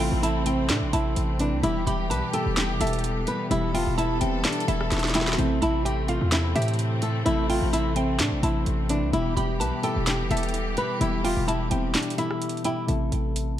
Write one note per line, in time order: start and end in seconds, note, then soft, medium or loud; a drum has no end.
0.00 0.10 A1 loud
0.00 0.45 C3 loud
0.00 1.60 C3 medium
0.00 0.46 E3 medium
0.00 9.09 E3 medium
0.00 0.46 A3 loud
0.00 1.60 A3 medium
0.00 1.60 C4 loud
0.00 1.66 C4 medium
0.00 0.47 E4 medium
0.00 0.19 F4 medium
0.00 0.94 A4 loud
0.00 0.22 G5 medium
0.00 open hi-hat medium
0.12 0.71 A1 loud
0.23 0.42 E4 medium
0.23 0.45 A5 medium
0.23 closed hi-hat medium
0.45 0.86 C3 medium
0.45 0.87 E3 medium
0.45 0.87 A3 medium
0.45 0.65 C4 medium
0.45 0.87 E4 medium
0.45 0.87 C5 medium
0.45 0.90 G5 medium
0.45 closed hi-hat medium
0.69 0.84 A2 loud
0.69 0.89 D4 medium
0.69 snare loud
0.69 clap medium
0.69 closed hi-hat medium
0.82 0.93 A1 loud
0.92 1.16 A1 loud
0.92 1.33 C3 medium
0.92 1.33 E3 medium
0.92 1.34 A3 medium
0.92 1.37 E4 medium
0.92 1.34 E4 medium
0.92 1.34 A4 medium
0.92 1.59 A5 medium
0.92 closed hi-hat medium
1.16 1.54 A1 loud
1.16 closed hi-hat medium
1.39 1.60 C3 medium
1.39 1.60 E3 medium
1.39 1.60 A3 medium
1.39 1.59 D4 medium
1.39 1.60 E4 medium
1.39 1.61 B4 medium
1.39 closed hi-hat medium
1.52 1.63 C2 loud
1.63 1.86 E1 loud
1.63 2.24 B2 loud
1.63 2.24 E3 medium
1.63 2.24 G3 loud
1.63 5.35 G3 medium
1.63 5.35 B3 medium
1.63 1.83 E4 loud
1.63 2.24 E4 medium
1.63 3.49 G4 loud
1.63 2.25 G4 loud
1.63 closed hi-hat medium
1.87 2.12 E1 loud
1.87 2.06 G4 medium
1.87 2.09 B5 medium
1.87 closed hi-hat medium
2.10 2.22 B1 loud
2.10 2.30 B4 medium
2.10 2.32 A5 medium
2.10 closed hi-hat medium
2.33 2.74 B2 medium
2.33 2.74 E3 medium
2.33 2.74 G3 medium
2.33 2.74 E4 medium
2.33 2.75 G4 medium
2.33 2.53 A4 medium
2.33 2.78 G5 medium
2.33 closed hi-hat medium
2.46 2.71 E1 loud
2.57 2.76 G4 medium
2.57 snare loud
2.57 clap loud
2.57 closed hi-hat medium
2.70 2.80 F1 loud
2.79 3.26 E1 loud
2.79 3.41 B2 medium
2.79 3.41 E3 medium
2.79 3.41 G3 medium
2.79 3.42 E4 medium
2.79 3.25 A4 medium
2.79 3.42 A4 medium
2.79 3.03 E5 medium
2.79 closed hi-hat medium
2.87 closed hi-hat medium
2.93 closed hi-hat medium
2.99 closed hi-hat soft
3.04 closed hi-hat medium
3.27 3.47 B4 medium
3.27 closed hi-hat medium
3.50 3.85 E1 loud
3.50 4.11 B2 loud
3.50 4.11 E3 medium
3.50 4.12 G3 medium
3.50 3.70 E4 loud
3.50 4.12 E4 medium
3.50 4.12 G4 loud
3.50 5.37 A4 loud
3.50 closed hi-hat medium
3.74 3.94 F4 medium
3.74 3.97 G5 medium
3.74 open hi-hat medium
3.87 4.20 E1 loud
3.98 4.17 E4 medium
3.98 4.20 A5 medium
3.98 closed hi-hat medium
4.20 4.44 E1 loud
4.20 4.61 B2 medium
4.20 4.61 E3 medium
4.20 4.62 G3 medium
4.20 4.40 C4 medium
4.20 4.62 E4 medium
4.20 4.62 G4 medium
4.20 4.65 G5 medium
4.20 closed hi-hat medium
4.45 4.64 D4 medium
4.45 snare loud
4.45 clap medium
4.45 closed hi-hat medium
4.53 closed hi-hat medium
4.60 closed hi-hat medium
4.67 4.91 E1 loud
4.67 5.08 B2 medium
4.67 5.08 E3 medium
4.67 5.09 G3 medium
4.67 5.12 E4 medium
4.67 5.09 E4 medium
4.67 5.09 A4 medium
4.67 5.12 E5 medium
4.67 closed hi-hat medium
4.81 cross-stick loud
4.92 5.37 E1 loud
4.92 snare medium
4.92 closed hi-hat medium
4.98 snare medium
4.98 closed hi-hat medium
5.04 snare medium
5.04 closed hi-hat soft
5.09 snare medium
5.14 5.35 B2 medium
5.14 5.35 E3 medium
5.14 5.35 G3 medium
5.14 5.34 E4 medium
5.14 5.35 E4 medium
5.14 5.35 G4 medium
5.14 5.37 G5 medium
5.14 snare medium
5.14 closed hi-hat medium
5.21 snare medium
5.27 snare loud
5.33 5.98 C3 loud
5.33 snare loud
5.37 5.61 A1 loud
5.37 9.10 C3 medium
5.37 5.99 E3 medium
5.37 5.99 A3 medium
5.37 9.10 A3 medium
5.37 9.10 C4 loud
5.37 5.58 C4 loud
5.37 5.99 E4 loud
5.37 5.99 A4 loud
5.37 closed hi-hat medium
5.62 6.19 A1 loud
5.62 5.81 E4 medium
5.62 5.84 A5 medium
5.62 closed hi-hat medium
5.85 6.04 G4 medium
5.85 6.08 G5 medium
5.85 closed hi-hat medium
6.08 6.49 C3 medium
6.08 6.49 E3 medium
6.08 6.49 A3 medium
6.08 6.50 C4 medium
6.08 6.28 F4 medium
6.08 6.50 A4 medium
6.08 6.53 F5 medium
6.08 closed hi-hat medium
6.21 6.54 E2 loud
6.32 6.51 E4 medium
6.32 snare loud
6.32 clap loud
6.32 closed hi-hat medium
6.54 7.23 A2 loud
6.54 7.16 C3 medium
6.54 7.16 E3 medium
6.54 7.16 A3 medium
6.54 7.16 E4 medium
6.54 7.00 G4 medium
6.54 7.17 A4 medium
6.54 6.78 E5 medium
6.54 closed hi-hat medium
6.62 closed hi-hat medium
6.68 closed hi-hat medium
6.74 closed hi-hat soft
6.79 closed hi-hat medium
7.02 7.22 A4 medium
7.02 closed hi-hat medium
7.25 7.60 A1 loud
7.25 7.86 C3 loud
7.25 7.86 E3 medium
7.25 7.87 A3 loud
7.25 7.45 E4 loud
7.25 7.87 E4 medium
7.25 7.87 A4 loud
7.25 closed hi-hat medium
7.50 7.69 F4 medium
7.50 7.72 G5 medium
7.50 open hi-hat medium
7.62 8.21 A1 loud
7.73 7.92 E4 medium
7.73 7.95 A5 medium
7.73 closed hi-hat medium
7.95 8.36 C3 medium
7.95 8.37 E3 medium
7.95 8.37 A3 medium
7.95 8.16 C4 medium
7.95 8.37 E4 medium
7.95 8.37 C5 medium
7.95 8.40 G5 medium
7.95 closed hi-hat medium
8.19 8.34 A2 loud
8.19 8.39 D4 medium
8.19 snare loud
8.19 clap medium
8.19 closed hi-hat medium
8.32 8.43 A1 loud
8.42 8.66 A1 loud
8.42 8.83 C3 medium
8.42 8.83 E3 medium
8.42 8.84 A3 medium
8.42 8.87 E4 medium
8.42 8.84 E4 medium
8.42 8.84 A4 medium
8.42 9.09 A5 medium
8.42 closed hi-hat medium
8.66 9.04 A1 loud
8.66 closed hi-hat medium
8.89 9.10 C3 medium
8.89 9.10 E3 medium
8.89 9.10 A3 medium
8.89 9.09 D4 medium
8.89 9.10 E4 medium
8.89 9.11 B4 medium
8.89 closed hi-hat medium
9.02 9.13 C2 loud
9.13 9.36 E1 loud
9.13 9.74 B2 loud
9.13 9.74 E3 medium
9.13 12.85 E3 medium
9.13 12.85 G3 medium
9.13 9.74 G3 medium
9.13 12.85 B3 medium
9.13 9.33 E4 loud
9.13 9.74 E4 medium
9.13 12.85 G4 loud
9.13 9.75 G4 loud
9.13 closed hi-hat medium
9.37 9.62 E1 loud
9.37 9.56 G4 medium
9.37 9.59 B5 medium
9.37 closed hi-hat medium
9.60 9.72 B1 loud
9.60 9.80 B4 medium
9.60 9.82 A5 medium
9.60 closed hi-hat medium
9.83 10.24 B2 medium
9.83 10.24 E3 medium
9.83 10.24 G3 medium
9.83 10.24 E4 medium
9.83 10.25 G4 medium
9.83 10.03 A4 medium
9.83 10.28 G5 medium
9.83 closed hi-hat medium
9.96 10.21 E1 loud
10.07 10.26 G4 medium
10.07 snare loud
10.07 clap loud
10.07 closed hi-hat medium
10.20 10.30 F1 loud
10.29 10.76 E1 loud
10.29 10.91 B2 medium
10.29 10.91 E3 medium
10.29 10.91 G3 medium
10.29 10.92 E4 medium
10.29 10.75 A4 medium
10.29 10.92 A4 medium
10.29 10.53 E5 medium
10.29 closed hi-hat medium
10.37 closed hi-hat medium
10.43 closed hi-hat medium
10.49 closed hi-hat medium
10.54 closed hi-hat medium
10.77 10.97 B4 medium
10.77 closed hi-hat medium
11.00 11.35 E1 loud
11.00 11.61 B2 loud
11.00 11.61 E3 medium
11.00 11.62 G3 medium
11.00 11.20 E4 loud
11.00 11.62 E4 loud
11.00 11.62 G4 loud
11.00 closed hi-hat medium
11.24 11.44 F4 medium
11.24 11.47 G5 medium
11.24 open hi-hat medium
11.37 11.70 E1 loud
11.48 11.67 E4 medium
11.48 11.70 A5 loud
11.48 closed hi-hat medium
11.70 11.95 E1 loud
11.70 12.11 B2 medium
11.70 12.11 E3 medium
11.70 12.12 G3 medium
11.70 11.90 C4 medium
11.70 12.12 E4 medium
11.70 12.12 G4 medium
11.70 12.15 G5 medium
11.70 closed hi-hat medium
11.95 12.14 D4 medium
11.95 snare loud
11.95 clap loud
11.95 closed hi-hat medium
12.03 closed hi-hat medium
12.10 closed hi-hat medium
12.17 12.58 B2 medium
12.17 12.58 E3 medium
12.17 12.59 G3 medium
12.17 12.62 E4 medium
12.17 12.59 E4 medium
12.17 12.59 A4 medium
12.17 12.62 E5 medium
12.17 closed hi-hat medium
12.31 cross-stick medium
12.42 closed hi-hat medium
12.49 closed hi-hat medium
12.57 closed hi-hat soft
12.64 12.85 B2 medium
12.64 12.85 E3 medium
12.64 12.85 G3 medium
12.64 12.85 E4 medium
12.64 12.84 E4 medium
12.64 12.85 G4 medium
12.64 12.87 G5 medium
12.64 closed hi-hat medium
12.87 13.11 A1 loud
12.87 13.48 C3 loud
12.87 13.49 E3 medium
12.87 13.49 A3 medium
12.87 13.49 E4 medium
12.87 13.49 A4 loud
12.87 closed hi-hat medium
13.12 13.60 A1 loud
13.12 closed hi-hat medium
13.36 closed hi-hat medium